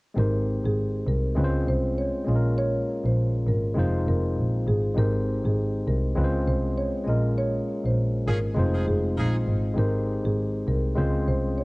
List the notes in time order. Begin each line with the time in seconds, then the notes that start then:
0.14 G#1 G#3 C4 D#4 G4 A#4
0.19 C5
0.64 G#1 G#4
1.07 C2 A#4
1.35 C#2 G#3 C4 C#4 F4 B4
1.44 C5
1.67 C2 C5
1.98 C#5
2.24 A#1 G#3 A#3 C#4 F4
2.28 G#4 D#5
2.36 A#4
2.58 C#5
3.04 A#1 C5
3.46 G#1 A#4
3.74 F1 G#3 C4 D#4 F4
3.79 C5
4.06 F1 A#4
4.37 A#1
4.67 G#1 G#4
4.94 G#1 G#3 C4 D#4 G4 A#4
4.99 C5
5.44 G#1 G#4
5.87 C2 A#4
6.15 C#2 G#3 C4 C#4 F4 B4
6.24 C5
6.47 C2 C5
6.78 C#5
7.04 A#1 G#3 A#3 C#4 F4 D#5
7.09 A#4
7.38 C#5
7.84 A#1 C5
8.27 G#1 F3 C#4 G#4 A#4
8.54 F1 G#3 C4 D#4 F4
8.59 C5
8.74 F3 D#4 G#4
8.87 F1 G#4
9.17 A#1 F3 D#4 G#4
9.47 G#1
9.74 G#1 G#3 C4 D#4 G4 A#4
9.79 C5
10.24 G#1 G#4
10.67 C2 A#4
10.95 C#2 G#3 C4 C#4 F4 C5
11.27 C2 C5
11.58 C#5